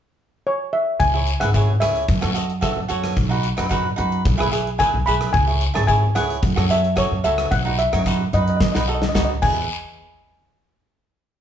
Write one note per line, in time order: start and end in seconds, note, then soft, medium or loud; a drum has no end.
0.47 0.74 C#5 medium
0.73 0.85 E5 medium
1.00 1.33 C#2 medium
1.00 1.42 G#5 medium
1.00 kick medium
1.00 closed hi-hat medium
1.00 long guiro medium
1.14 1.30 E4 medium
1.14 1.30 G#4 medium
1.14 1.31 C#5 medium
1.27 closed hi-hat medium
1.40 1.74 G#1 medium
1.40 1.49 E4 medium
1.40 1.49 G#4 medium
1.40 1.50 B4 medium
1.40 1.82 F#5 medium
1.40 cross-stick medium
1.40 closed hi-hat medium
1.54 1.71 E4 medium
1.54 1.71 G#4 medium
1.54 1.72 C#5 medium
1.54 kick medium
1.54 closed hi-hat medium
1.54 short guiro medium
1.80 2.03 C#2 medium
1.80 2.05 E4 medium
1.80 2.06 G#4 medium
1.80 2.06 C#5 medium
1.80 2.85 E5 medium
1.80 cross-stick medium
1.80 closed hi-hat medium
1.96 closed hi-hat medium
2.08 2.20 F#2 medium
2.08 kick loud
2.08 closed hi-hat medium
2.08 long guiro medium
2.21 2.67 F#2 medium
2.21 2.30 F#4 medium
2.21 2.30 A4 medium
2.21 2.31 C#5 medium
2.21 cross-stick medium
2.34 2.51 F#4 medium
2.34 2.52 A4 medium
2.34 2.52 D#5 medium
2.34 closed hi-hat medium
2.34 short guiro medium
2.50 closed hi-hat medium
2.61 2.79 F#4 medium
2.61 2.79 A4 medium
2.61 2.80 E5 medium
2.61 kick medium
2.61 cross-stick medium
2.61 closed hi-hat medium
2.61 short guiro medium
2.77 2.87 F#2 medium
2.88 3.12 F#2 medium
2.88 3.14 F#4 medium
2.88 3.14 A4 medium
2.88 3.15 C#5 medium
2.88 closed hi-hat medium
2.88 short guiro medium
3.04 cross-stick medium
3.04 closed hi-hat medium
3.16 3.50 B1 medium
3.16 kick medium
3.16 closed hi-hat medium
3.16 long guiro medium
3.29 3.46 D#4 medium
3.29 3.46 F#4 medium
3.29 3.47 B4 medium
3.44 closed hi-hat medium
3.57 3.91 F#2 medium
3.57 3.65 D#4 medium
3.57 3.66 F#4 medium
3.57 3.66 B4 medium
3.57 cross-stick medium
3.57 closed hi-hat medium
3.69 3.87 D#4 medium
3.69 3.87 F#4 medium
3.69 3.88 B4 medium
3.69 kick medium
3.69 closed hi-hat medium
3.69 short guiro medium
3.96 4.20 F#2 medium
3.96 4.22 D#4 medium
3.96 4.22 F#4 medium
3.96 4.23 B4 medium
3.96 closed hi-hat medium
4.12 closed hi-hat medium
4.25 4.37 B1 loud
4.25 kick loud
4.25 closed hi-hat medium
4.25 long guiro medium
4.38 4.83 B1 medium
4.38 4.46 E4 medium
4.38 4.47 G#4 medium
4.38 4.47 B4 medium
4.38 cross-stick medium
4.51 4.69 E4 medium
4.51 4.69 G#4 medium
4.51 4.69 B4 medium
4.51 closed hi-hat medium
4.51 short guiro medium
4.67 closed hi-hat medium
4.78 4.96 E4 medium
4.78 4.96 G#4 medium
4.78 4.97 B4 medium
4.78 5.07 G#5 loud
4.78 kick medium
4.78 cross-stick medium
4.78 closed hi-hat soft
4.78 short guiro medium
4.94 5.04 B1 medium
5.06 5.29 B1 medium
5.06 5.31 E4 medium
5.06 5.32 G#4 medium
5.06 5.32 B4 medium
5.06 5.34 B5 medium
5.06 closed hi-hat medium
5.06 short guiro medium
5.21 cross-stick medium
5.21 closed hi-hat medium
5.33 5.67 C#2 medium
5.33 5.76 G#5 medium
5.33 kick loud
5.33 closed hi-hat medium
5.33 long guiro medium
5.47 5.63 E4 medium
5.47 5.64 G#4 medium
5.47 5.65 C#5 medium
5.61 closed hi-hat medium
5.74 6.08 G#1 medium
5.74 5.82 E4 medium
5.74 5.83 G#4 medium
5.74 5.83 C#5 medium
5.74 5.88 A5 medium
5.74 cross-stick medium
5.74 closed hi-hat medium
5.87 6.05 E4 medium
5.87 6.05 G#4 medium
5.87 6.05 C#5 medium
5.87 6.13 G#5 medium
5.87 kick medium
5.87 closed hi-hat medium
5.87 short guiro medium
6.15 6.38 C#2 medium
6.15 6.40 E4 medium
6.15 6.40 G#4 medium
6.15 6.41 C#5 medium
6.15 6.66 F#5 medium
6.15 cross-stick medium
6.15 closed hi-hat medium
6.30 closed hi-hat medium
6.42 6.54 F#2 medium
6.42 kick loud
6.42 closed hi-hat medium
6.42 long guiro medium
6.56 7.01 F#2 medium
6.56 6.64 F#4 medium
6.56 6.65 A4 medium
6.56 6.65 C#5 medium
6.56 cross-stick medium
6.69 6.86 F#4 medium
6.69 6.87 A4 medium
6.69 6.87 C#5 medium
6.69 6.96 E5 medium
6.69 closed hi-hat medium
6.69 short guiro medium
6.84 closed hi-hat medium
6.96 7.13 F#4 medium
6.96 7.14 A4 medium
6.96 7.14 C#5 medium
6.96 7.26 C#5 medium
6.96 kick medium
6.96 cross-stick medium
6.96 closed hi-hat medium
6.96 short guiro medium
7.11 7.22 F#2 medium
7.24 7.47 C#2 medium
7.24 7.49 F#4 medium
7.24 7.49 A4 medium
7.24 7.50 C#5 medium
7.24 7.50 E5 medium
7.24 closed hi-hat medium
7.24 short guiro medium
7.38 cross-stick medium
7.38 closed hi-hat medium
7.51 7.85 B1 medium
7.51 7.63 F#5 medium
7.51 kick medium
7.51 closed hi-hat medium
7.51 long guiro medium
7.65 7.81 D#4 medium
7.65 7.82 F#4 medium
7.65 7.82 B4 medium
7.79 8.30 E5 medium
7.79 closed hi-hat medium
7.93 8.26 F#2 medium
7.93 8.01 D#4 medium
7.93 8.01 F#4 medium
7.93 8.02 C#5 medium
7.93 cross-stick medium
7.93 closed hi-hat medium
8.06 8.23 D#4 medium
8.06 8.23 F#4 medium
8.06 8.24 B4 medium
8.06 kick medium
8.06 closed hi-hat medium
8.06 short guiro medium
8.33 8.67 F#2 medium
8.33 8.58 D#4 medium
8.33 8.58 F#4 medium
8.33 8.59 B4 medium
8.33 8.40 D#5 medium
8.33 closed hi-hat medium
8.42 8.48 D#5 soft
8.48 8.55 D#5 medium
8.48 closed hi-hat medium
8.57 8.63 D#5 soft
8.57 kick loud
8.57 snare medium
8.61 8.71 D#5 soft
8.61 long guiro medium
8.72 9.08 B1 medium
8.72 8.82 D#4 medium
8.72 8.83 F#4 medium
8.72 8.83 B4 medium
8.72 8.79 D#5 soft
8.72 snare medium
8.81 8.87 D#5 soft
8.87 9.04 D#4 medium
8.87 9.05 F#4 medium
8.87 9.05 A4 medium
8.87 8.94 D#5 soft
8.87 short guiro medium
8.95 9.01 D#5 soft
9.02 9.08 D#5 soft
9.02 snare medium
9.09 9.15 D#5 medium
9.15 9.40 C#2 medium
9.15 9.32 D#4 medium
9.15 9.32 F#4 medium
9.15 9.33 B4 medium
9.15 9.24 D#5 soft
9.15 kick medium
9.15 snare medium
9.15 short guiro medium
9.25 9.31 D#5 medium
9.42 9.68 E2 medium
9.42 9.68 E4 medium
9.42 9.68 G#4 medium
9.42 9.68 B4 medium
9.42 9.68 G#5 medium
9.42 kick loud
9.42 crash medium
9.42 long guiro medium